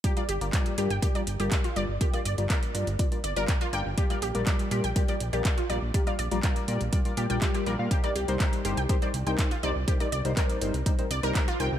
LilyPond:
<<
  \new Staff \with { instrumentName = "Synth pluck" } { \time 4/4 \key g \minor \tempo 4 = 122 g'16 d''16 g'16 r8. g'16 g''16 g'16 d''16 r16 g'16 r16 f'16 d''16 r16 | g'16 d''16 d''16 r16 bes'16 r4 r16 d''16 bes'16 bes'16 f'16 g''16 r16 | g'16 d''16 g'16 r8. g'16 g''16 g'16 d''16 r16 g'16 r16 f'16 d''16 r16 | g'16 d''16 d''16 r16 bes'16 r4 r16 g'16 g''16 g16 g'16 bes'16 r16 |
g'16 d''16 g'16 r8. g'16 g''16 g'16 d''16 r16 g''16 r16 f'16 d''16 r16 | g'16 d''16 d''16 r16 bes'16 r4 r16 d''16 bes'16 bes'16 f'16 g''16 r16 | }
  \new Staff \with { instrumentName = "Analog polysynth" } { \time 4/4 \key g \minor <g f' bes' d''>16 <g f' bes' f''>16 r16 <g f' bes' d''>16 <g f' bes' d''>8 <g f' bes' d''>16 r16 <g f' bes' d''>16 <g f' bes' d''>16 r16 <g f' bes' d''>16 g16 r16 <g f' bes' d''>16 r16 | <g f' bes' d''>16 <g f' bes' f''>16 r16 <g f' bes' d''>16 <g f' bes' d''>8 <g f' bes' d''>16 r16 <g f' bes' d''>16 <g f' bes' d''>16 r16 <g f' bes' d''>16 <g f'>16 r16 <g f' bes' d''>16 r16 | <g f' bes' d''>16 <g f' bes' f''>16 r16 <g f' bes' d''>16 <g f' bes' d''>8 <g f' bes' d''>16 r16 <g f' bes' d''>16 <g f' bes' d''>16 r16 <g f' bes' d''>16 <g bes' d''>16 r16 <g f' bes' d''>16 r16 | <g f' bes' d''>16 <g f' bes' f''>16 r16 <g f' bes' d''>16 <g f' bes' d''>8 <g f' bes' d''>16 r16 <g f' bes' d''>16 <g f' bes' d''>16 <g f' bes' d''>16 <g f' bes' d''>16 <g d''>16 <g f' bes' d''>16 <g f' bes' d''>16 <g f' bes' f''>16 |
<g ees' bes' c''>16 <g ees' bes' d''>16 r16 <g ees' bes' c''>16 <g ees' bes' c''>8 <g ees' bes' c''>16 r16 <g ees' bes' c''>16 <g ees' bes' c''>16 r16 <g ees' bes' c''>16 r8 <g ees' bes' c''>16 r16 | <g ees' bes' c''>16 <g ees' bes' d''>16 r16 <g ees' bes' c''>16 <g ees' bes' c''>8 <g ees' bes' c''>16 r16 <g ees' bes' c''>16 <g ees' bes' c''>16 r16 <g ees' bes' c''>16 r8 <g ees' bes' c''>16 r16 | }
  \new Staff \with { instrumentName = "Analog synth bass" } { \clef bass \time 4/4 \key g \minor r8 g,,16 g,,16 r8 g,16 g,,16 r8 g,,16 g,,16 r8 g,,16 g,,16 | r8 g,,16 g,,16 r8 g,16 g,,16 r8 g,,16 g,,16 r8 g,,16 g,,16 | r8 bes,,16 bes,,16 r8 bes,16 bes,,16 r8 bes,,16 bes,,16 r8 bes,,16 bes,,16 | r8 bes,,16 bes,,16 r8 bes,16 bes,,16 r8 bes,16 bes,,16 r8 bes,,16 bes,16 |
r8 c,16 c,16 r8 g,,16 c,16 r8 c,16 c,16 r8 c,16 c,16 | r8 c,16 c,16 r8 g,,16 c,16 r8 c,16 c,16 r8 c,16 c,16 | }
  \new DrumStaff \with { instrumentName = "Drums" } \drummode { \time 4/4 <hh bd>16 hh16 hh16 hh16 <hc hh bd>16 hh16 hh16 hh16 <hh bd>16 hh16 hh16 hh16 <hc hh bd>16 hh16 hh8 | <hh bd>16 hh16 hh16 hh16 <hc hh bd>16 hh16 hh16 hh16 <hh bd>16 hh16 hh16 hh16 <hc hh bd>16 hh16 hh8 | <hh bd>16 hh16 hh16 hh16 <hc hh bd>16 hh16 hh16 hh16 <hh bd>16 hh16 hh16 hh16 <hc hh bd>16 hh16 hh8 | <hh bd>16 hh16 hh16 hh16 <hc hh bd>16 hh16 hh16 hh16 <hh bd>16 hh16 hh16 hh16 <hc hh bd>16 hh16 hh8 |
<hh bd>16 hh16 hh16 hh16 <hc hh bd>16 hh16 hh16 hh16 <hh bd>16 hh16 hh16 hh16 <hc hh bd>16 hh16 hh8 | <hh bd>16 hh16 hh16 hh16 <hc hh bd>16 hh16 hh16 hh16 <hh bd>16 hh16 hh16 hh16 <hc hh bd>16 hh16 hh8 | }
>>